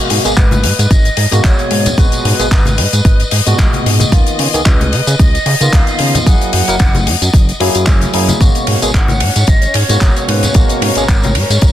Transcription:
Already playing: B2 G#3 A#3 F#4 D#5
0.10 G#2, open hi-hat
0.25 G#1 B2 G#3 A#3 G#4, closed hi-hat, tambourine
0.37 G#1 B4, kick, clap, closed hi-hat
0.51 closed hi-hat, tambourine, high conga
0.64 G#2, open hi-hat
0.79 G#2, closed hi-hat, tambourine
0.91 G#1 D#5, kick, closed hi-hat, tambourine
1.05 closed hi-hat, tambourine
1.17 G#2, open hi-hat
1.31 G#2 B2 G#3 A#3 F#4, closed hi-hat, tambourine
1.44 G#1 C#5, kick, clap, closed hi-hat, tambourine
1.59 closed hi-hat, tambourine
1.71 G#2, open hi-hat
1.86 closed hi-hat, tambourine, low conga
1.97 G#1 A#2 B2 G#3 F#4 B4, kick, closed hi-hat, tambourine
2.12 closed hi-hat, tambourine
2.25 G#2, open hi-hat
2.39 G#1 B2 G#3 A#3 G#4, closed hi-hat, tambourine
2.51 G#1, kick, clap, closed hi-hat, tambourine
2.66 closed hi-hat, tambourine, high conga
2.78 G#2, open hi-hat
2.93 G#2, closed hi-hat, tambourine
3.05 G#1, kick, closed hi-hat
3.20 closed hi-hat, tambourine
3.31 G#2, open hi-hat
3.46 G#2 A#2 B2 G#3 F#4, closed hi-hat, tambourine
3.59 G#1, kick, clap, closed hi-hat
3.73 closed hi-hat, tambourine, high conga
3.85 G#2, open hi-hat
4.00 closed hi-hat, tambourine, high conga
4.12 C#2 D#3 A#3 B3 F4, kick, closed hi-hat, tambourine
4.27 closed hi-hat, tambourine
4.39 C#3, open hi-hat
4.54 C#2 D#3 A#3 B3 G#4, closed hi-hat, tambourine
4.66 C#2 B4, kick, clap, closed hi-hat
4.81 closed hi-hat, tambourine, high conga
4.92 C#3, open hi-hat
5.07 C#3, closed hi-hat, tambourine
5.19 C#2 D#5, kick, closed hi-hat
5.35 closed hi-hat, tambourine
5.46 C#3, open hi-hat
5.60 C#3 D#3 A#3 B3 F4, closed hi-hat, tambourine
5.73 C#2 F5, kick, clap, closed hi-hat
5.87 closed hi-hat, tambourine
5.99 C#3, open hi-hat
6.15 closed hi-hat, tambourine, low conga
6.26 F#1 F#3 A#3 E4 G#4 F#5, kick, closed hi-hat, tambourine
6.41 closed hi-hat, tambourine
6.53 F#2, open hi-hat
6.68 F#1 F#3 A#3 E4 A#4, closed hi-hat, tambourine
6.79 F#1, kick, clap, closed hi-hat, tambourine
6.95 closed hi-hat, tambourine, high conga
7.07 F#2, open hi-hat
7.22 F#2, closed hi-hat, tambourine
7.34 F#1, kick, closed hi-hat, tambourine
7.49 closed hi-hat, tambourine
7.60 F#2 F#3 A#3 E4 G#4, open hi-hat
7.75 F#2, closed hi-hat, tambourine
7.86 F#1, kick, clap, closed hi-hat, tambourine
8.01 closed hi-hat, tambourine, high conga
8.13 F#2 F#3 A#3 E4 G#4, open hi-hat
8.28 closed hi-hat, tambourine, high conga
8.40 G#1 B2 A#3 C#4 F#4 C#5, kick, closed hi-hat, tambourine
8.55 closed hi-hat, tambourine
8.67 G#2, open hi-hat, ride
8.82 G#1 B2 G#3 A#3 G#4, closed hi-hat, tambourine
8.88 G#5
8.94 G#1 F#5, kick, clap, closed hi-hat
9.08 closed hi-hat, tambourine, high conga
9.20 G#2, open hi-hat, ride
9.36 G#2, closed hi-hat, tambourine
9.47 G#1 D#5, kick, closed hi-hat, tambourine
9.62 closed hi-hat, tambourine
9.74 G#2 C#5, open hi-hat, ride
9.89 G#2 B2 G#3 A#3 F#4, closed hi-hat, tambourine
10.01 G#1, kick, clap, closed hi-hat, tambourine
10.16 closed hi-hat, tambourine
10.28 G#2 B4, open hi-hat, ride
10.43 closed hi-hat, tambourine, low conga
10.54 G#1 B2 G#3 A#3 F#4 A#4, kick, closed hi-hat, tambourine
10.69 closed hi-hat, tambourine
10.82 G#2, open hi-hat, ride
10.95 G#1 B2 G#3 A#3 G#4, closed hi-hat, tambourine
11.09 G#1, kick, clap, closed hi-hat, tambourine
11.23 closed hi-hat, tambourine, high conga
11.35 G#2, open hi-hat, ride
11.50 G#2, closed hi-hat, tambourine
11.61 G#1, kick, closed hi-hat

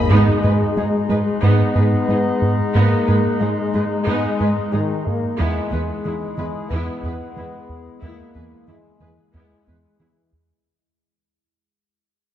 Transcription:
Already playing: B2 D#4 G#4 D#5 B5
0.10 G#2 G#3 B3 D#4 G#4 D#5
0.44 G#2 G#4 B4
0.77 G#2 G#3 D#4 G#4
1.09 G#2 G#3 G#4 B4
1.43 G#2 B3 D#4
1.75 G#2 G#4 B4
2.08 G#2 G#3 D#4 G#4
2.42 G#2
2.74 G#2 A#3 B3 D#4
3.07 G#2 G#4 B4
3.41 G#2 G#3 D#4 G#4
3.74 G#2 G#3 G#4 B4
4.07 G#2 G#3 B3 D#4
4.40 G#2 G#4 B4
4.73 G#2 D#3 G#3 D#4 G#4
5.07 G#2 A#3
5.38 E2 G#3 B3 E4 G#4
5.71 E2 G#4 B4
6.05 E2 E3 E4 G#4
6.38 E2 E3 G#4 B4
6.70 E2 B3 E4
7.03 E2 G#4 B4
7.36 E2 E3 E4 G#4
7.69 E2
8.02 E2 A#3 B3 E4
8.35 E2 G#4 B4
8.68 E2 E3 G#3 E4 G#4
9.00 E2 E3 G#4 B4
9.34 E2 G#3 B3 E4
9.67 E2 G#4 B4
9.99 E2 E3 E4 G#4
10.33 E2

